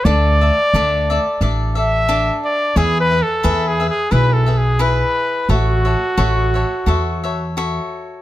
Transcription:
X:1
M:4/4
L:1/8
Q:1/4=88
K:A
V:1 name="Cavaquinho"
[DAde] [Ade] [DAde] [Ade] [DAde] [Ade] [DAde]2 | [EGBe] [GBe] [EGBe] [GBe] [EGBe] [GBe] [EGBe]2 | [FAce] [Ace] [FAce] [Ace] [FAce] [Ace] [FAce]2 |]
V:2 name="Trumpet"
d4 z e2 d | (3G B A- (3A G G (3B A G B2 | F6 z2 |]
V:3 name="Upright bass" clef=bass
D,,2 D,,2 A,,,4 | E,,2 E,,2 B,,,4 | A,,,2 A,,,2 E,,4 |]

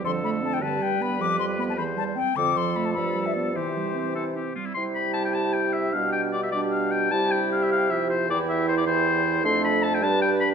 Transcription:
X:1
M:6/8
L:1/16
Q:3/8=102
K:C
V:1 name="Flute"
c'2 b2 a g a2 g2 b2 | d'2 c'2 b a b2 a2 g2 | d'2 c'2 b a b3 e d2 | c8- c2 z2 |
G12 | G6 G6 | G12 | G6 G6 |
A6 B6 |]
V:2 name="Oboe"
A6 B6- | B6 c4 z2 | A12 | G6 A2 G2 F E |
c'2 b2 a g a2 g2 e2 | f2 g2 d e d2 f2 g2 | a2 g2 f e f2 e2 c2 | d2 e2 c d c6 |
c'2 b2 a g a2 g2 b2 |]
V:3 name="Clarinet"
F,2 A,2 C2 D,2 G,2 B,2 | F,2 G,2 B,2 E,2 G,2 C2 | D,2 F,2 A,2 F,2 G,2 B,2 | E,2 G,2 C2 E2 C2 G,2 |
E12 | D6 D6 | E12 | E6 E6 |
D6 D6 |]
V:4 name="French horn" clef=bass
D,6 G,6- | G,8- G,2 z2 | F,12 | E,8- E,2 z2 |
G,12 | G,6 G,6 | G,8 F,4 | E,6 E,6 |
A,6 G,6 |]
V:5 name="Bassoon" clef=bass
F,,6 G,,6 | F,,6 E,,4 z2 | F,,6 G,,6 | C,8- C,2 z2 |
C,12 | B,,12 | C,12 | E,,12 |
F,,6 G,,6 |]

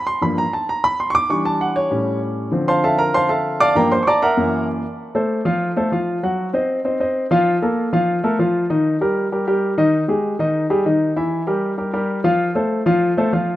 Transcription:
X:1
M:4/4
L:1/8
Q:1/4=194
K:F
V:1 name="Grand piano"
c' =b _b a b =b c' [_d'=d'] | _d' a _g _d3 z2 | z [cfac'] [Aefa] [Bb] [cfac'] [Aefa]2 [dfad'] | [Bfgb] [cc'] [dab_d'=d'] [Be_gb]3 z2 |
z [A,Ac]2 [F,Ff]2 [A,Ac] [F,Ff]2 | [_G,_G_g]2 [Cc_e]2 [Cce] [Cce]2 [F,Ff]- | [F,Ff] [B,AB]2 [F,Ff]2 [A,AB] [F,Ff]2 | [_E,_E_e]2 [G,GB]2 [G,GB] [G,GB]2 [E,Ee]- |
[_E,_E_e] [_A,G_A]2 [E,Ee]2 [G,GA] [E,Ee]2 | [E,Ee]2 [G,GB]2 [G,GB] [G,GB]2 [F,Ff]- | [F,Ff] [A,Ac]2 [F,Ff]2 [A,Ac] [F,Ff]2 |]
V:2 name="Grand piano" clef=bass
z [G,,F,B,] z6 | [E,G,D]4 [A,,G,^C]4 | [D,F,C]8 | [G,,F,B,] z3 [_G,,_F,B,]3 z |
z8 | z8 | z8 | z8 |
z8 | z8 | z8 |]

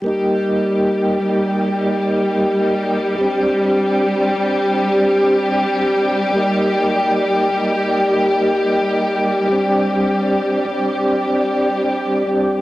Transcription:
X:1
M:4/4
L:1/8
Q:"Swing 16ths" 1/4=76
K:Eblyd
V:1 name="Synth texture"
d8- | d8- | d8- | d8 |]
V:2 name="String section"
[G,G]8- | [G,G]8- | [G,G]8- | [G,G]8 |]
V:3 name="Tonewheel organ"
[G,B,EG]3 [G,B,EG]4- [G,B,EG] | [G,CDG]3 [G,CDG]4- [G,CDG] | [G,B,EG]3 [G,B,EG]4- [G,B,EG] | [G,CDG]3 [G,CDG]4 [G,CDG] |]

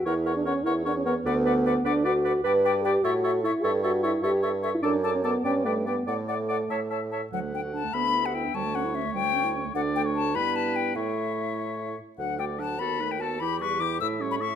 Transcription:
X:1
M:6/8
L:1/16
Q:3/8=100
K:Bm
V:1 name="Flute"
f2 f2 f2 f2 f2 f2 | f2 f2 f2 f2 f2 f2 | [K:D] g2 g2 g2 e2 e2 e2 | e2 e2 e2 e2 e2 e2 |
a2 a2 a2 g2 g2 g2 | f2 f2 f2 a2 a2 a2 | f2 g2 a2 b3 f g2 | a2 f2 e2 g6 |
f2 g2 a2 b2 a2 g2 | e8- e2 z2 | f2 g2 a2 b3 g a2 | b2 c'2 d'2 e'3 b c'2 |]
V:2 name="Oboe"
c2 c2 c2 c2 c2 c2 | d2 d2 d2 d2 d2 d2 | [K:D] d2 d2 d2 c2 c2 c2 | c2 c2 c2 c2 c2 c2 |
d2 d2 d2 d2 d2 d2 | d2 d2 d2 e2 e2 e2 | f6 e6 | c12 |
d3 c3 B6 | c8- c2 z2 | f2 d2 f2 A2 B2 A2 | G2 B2 G2 e2 c2 e2 |]
V:3 name="Clarinet"
^A2 A2 A2 A2 A2 A2 | B2 B2 B2 B2 B2 B2 | [K:D] B2 B2 B2 A2 A2 A2 | A2 A2 A2 A2 A2 A2 |
A2 A2 A2 B2 B2 B2 | d2 d2 d2 c2 c2 c2 | F, A, D F D A, B, D E G E D | G, A, C E C A, G, A, C E C A, |
D6 E6 | E8- E2 z2 | D2 F2 D2 F2 ^D2 F2 | E2 G2 E2 E2 C2 E2 |]
V:4 name="French horn"
E3 D C2 E2 D C B,2 | B,6 D2 F4 | [K:D] B4 G2 F4 E2 | A2 F2 E2 G2 z3 E |
D3 C B,2 C2 A,2 B,2 | A,8- A,2 z2 | A,6 B,6 | A,12 |
A,6 B,6 | A,8- A,2 z2 | F,2 A,2 F,2 B,2 A,2 B,2 | E,2 G,2 E,2 A,2 G,2 A,2 |]
V:5 name="Bassoon" clef=bass
E,,6 E,,6 | D,,6 D,,6 | [K:D] G,,6 A,,6 | G,,6 G,,6 |
F,,6 G,,6 | A,,6 A,,6 | D,,6 D,,6 | D,,6 D,,6 |
D,,6 G,,6 | A,,8- A,,2 z2 | D,,6 ^D,,6 | E,,6 A,,6 |]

